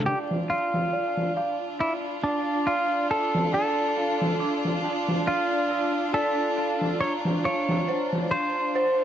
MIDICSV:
0, 0, Header, 1, 6, 480
1, 0, Start_track
1, 0, Key_signature, -1, "minor"
1, 0, Tempo, 869565
1, 29, Time_signature, 4, 2, 24, 8
1, 4991, End_track
2, 0, Start_track
2, 0, Title_t, "Synth bell"
2, 0, Program_c, 0, 98
2, 33, Note_on_c, 0, 74, 80
2, 147, Control_c, 0, 64, 127
2, 180, Note_off_c, 0, 74, 0
2, 274, Note_on_c, 0, 88, 62
2, 501, Note_off_c, 0, 88, 0
2, 514, Note_on_c, 0, 74, 86
2, 741, Note_off_c, 0, 74, 0
2, 754, Note_on_c, 0, 77, 65
2, 900, Note_off_c, 0, 77, 0
2, 992, Note_on_c, 0, 86, 86
2, 1210, Note_off_c, 0, 86, 0
2, 1235, Note_on_c, 0, 81, 79
2, 1451, Note_off_c, 0, 81, 0
2, 1474, Note_on_c, 0, 74, 84
2, 1620, Note_off_c, 0, 74, 0
2, 1713, Note_on_c, 0, 88, 62
2, 1941, Note_off_c, 0, 88, 0
2, 1951, Note_on_c, 0, 74, 82
2, 2179, Note_off_c, 0, 74, 0
2, 2191, Note_on_c, 0, 77, 64
2, 2339, Note_off_c, 0, 77, 0
2, 2429, Note_on_c, 0, 86, 88
2, 2648, Note_off_c, 0, 86, 0
2, 2672, Note_on_c, 0, 81, 85
2, 2889, Note_off_c, 0, 81, 0
2, 2910, Note_on_c, 0, 74, 92
2, 3058, Note_off_c, 0, 74, 0
2, 3150, Note_on_c, 0, 88, 62
2, 3379, Note_off_c, 0, 88, 0
2, 3389, Note_on_c, 0, 74, 91
2, 3619, Note_off_c, 0, 74, 0
2, 3630, Note_on_c, 0, 77, 61
2, 3778, Note_off_c, 0, 77, 0
2, 3869, Note_on_c, 0, 82, 87
2, 3877, Control_c, 0, 64, 0
2, 3985, Control_c, 0, 64, 127
2, 4088, Note_off_c, 0, 82, 0
2, 4112, Note_on_c, 0, 77, 89
2, 4330, Note_off_c, 0, 77, 0
2, 4352, Note_on_c, 0, 72, 83
2, 4499, Note_off_c, 0, 72, 0
2, 4591, Note_on_c, 0, 84, 70
2, 4820, Note_off_c, 0, 84, 0
2, 4832, Note_on_c, 0, 72, 87
2, 4991, Note_off_c, 0, 72, 0
2, 4991, End_track
3, 0, Start_track
3, 0, Title_t, "Clean electric guitar"
3, 0, Program_c, 1, 27
3, 34, Note_on_c, 1, 67, 83
3, 98, Note_off_c, 1, 67, 0
3, 275, Note_on_c, 1, 65, 73
3, 730, Note_off_c, 1, 65, 0
3, 996, Note_on_c, 1, 64, 77
3, 1060, Note_off_c, 1, 64, 0
3, 1234, Note_on_c, 1, 62, 76
3, 1473, Note_on_c, 1, 65, 85
3, 1479, Note_off_c, 1, 62, 0
3, 1694, Note_off_c, 1, 65, 0
3, 1715, Note_on_c, 1, 69, 92
3, 1948, Note_off_c, 1, 69, 0
3, 1954, Note_on_c, 1, 69, 91
3, 2650, Note_off_c, 1, 69, 0
3, 2911, Note_on_c, 1, 65, 79
3, 3387, Note_off_c, 1, 65, 0
3, 3389, Note_on_c, 1, 69, 87
3, 3865, Note_off_c, 1, 69, 0
3, 3867, Note_on_c, 1, 73, 98
3, 3932, Note_off_c, 1, 73, 0
3, 4114, Note_on_c, 1, 73, 98
3, 4586, Note_off_c, 1, 73, 0
3, 4588, Note_on_c, 1, 72, 96
3, 4991, Note_off_c, 1, 72, 0
3, 4991, End_track
4, 0, Start_track
4, 0, Title_t, "Violin section"
4, 0, Program_c, 2, 48
4, 39, Note_on_c, 2, 65, 78
4, 40, Note_on_c, 2, 62, 78
4, 4991, Note_off_c, 2, 62, 0
4, 4991, Note_off_c, 2, 65, 0
4, 4991, End_track
5, 0, Start_track
5, 0, Title_t, "Synth drone"
5, 0, Program_c, 3, 95
5, 34, Note_on_c, 3, 62, 77
5, 4991, Note_off_c, 3, 62, 0
5, 4991, End_track
6, 0, Start_track
6, 0, Title_t, "Drums"
6, 32, Note_on_c, 9, 42, 72
6, 87, Note_off_c, 9, 42, 0
6, 171, Note_on_c, 9, 38, 38
6, 226, Note_off_c, 9, 38, 0
6, 272, Note_on_c, 9, 42, 51
6, 327, Note_off_c, 9, 42, 0
6, 408, Note_on_c, 9, 38, 37
6, 463, Note_off_c, 9, 38, 0
6, 511, Note_on_c, 9, 42, 68
6, 566, Note_off_c, 9, 42, 0
6, 647, Note_on_c, 9, 38, 30
6, 702, Note_off_c, 9, 38, 0
6, 751, Note_on_c, 9, 42, 53
6, 807, Note_off_c, 9, 42, 0
6, 991, Note_on_c, 9, 42, 77
6, 1046, Note_off_c, 9, 42, 0
6, 1126, Note_on_c, 9, 42, 33
6, 1181, Note_off_c, 9, 42, 0
6, 1231, Note_on_c, 9, 42, 57
6, 1286, Note_off_c, 9, 42, 0
6, 1472, Note_on_c, 9, 42, 75
6, 1527, Note_off_c, 9, 42, 0
6, 1605, Note_on_c, 9, 42, 37
6, 1660, Note_off_c, 9, 42, 0
6, 1712, Note_on_c, 9, 42, 57
6, 1767, Note_off_c, 9, 42, 0
6, 1848, Note_on_c, 9, 38, 44
6, 1903, Note_off_c, 9, 38, 0
6, 1951, Note_on_c, 9, 42, 76
6, 2006, Note_off_c, 9, 42, 0
6, 2191, Note_on_c, 9, 42, 52
6, 2246, Note_off_c, 9, 42, 0
6, 2327, Note_on_c, 9, 38, 38
6, 2382, Note_off_c, 9, 38, 0
6, 2427, Note_on_c, 9, 42, 75
6, 2482, Note_off_c, 9, 42, 0
6, 2566, Note_on_c, 9, 38, 32
6, 2621, Note_off_c, 9, 38, 0
6, 2668, Note_on_c, 9, 42, 55
6, 2723, Note_off_c, 9, 42, 0
6, 2806, Note_on_c, 9, 38, 35
6, 2862, Note_off_c, 9, 38, 0
6, 2906, Note_on_c, 9, 42, 78
6, 2961, Note_off_c, 9, 42, 0
6, 3041, Note_on_c, 9, 42, 36
6, 3096, Note_off_c, 9, 42, 0
6, 3146, Note_on_c, 9, 42, 70
6, 3201, Note_off_c, 9, 42, 0
6, 3278, Note_on_c, 9, 42, 33
6, 3333, Note_off_c, 9, 42, 0
6, 3385, Note_on_c, 9, 42, 52
6, 3440, Note_off_c, 9, 42, 0
6, 3625, Note_on_c, 9, 42, 59
6, 3680, Note_off_c, 9, 42, 0
6, 3761, Note_on_c, 9, 38, 31
6, 3816, Note_off_c, 9, 38, 0
6, 3865, Note_on_c, 9, 42, 72
6, 3920, Note_off_c, 9, 42, 0
6, 4003, Note_on_c, 9, 38, 39
6, 4058, Note_off_c, 9, 38, 0
6, 4107, Note_on_c, 9, 42, 59
6, 4162, Note_off_c, 9, 42, 0
6, 4244, Note_on_c, 9, 38, 41
6, 4299, Note_off_c, 9, 38, 0
6, 4345, Note_on_c, 9, 42, 73
6, 4400, Note_off_c, 9, 42, 0
6, 4486, Note_on_c, 9, 38, 30
6, 4541, Note_off_c, 9, 38, 0
6, 4588, Note_on_c, 9, 42, 57
6, 4644, Note_off_c, 9, 42, 0
6, 4830, Note_on_c, 9, 42, 81
6, 4885, Note_off_c, 9, 42, 0
6, 4963, Note_on_c, 9, 42, 38
6, 4991, Note_off_c, 9, 42, 0
6, 4991, End_track
0, 0, End_of_file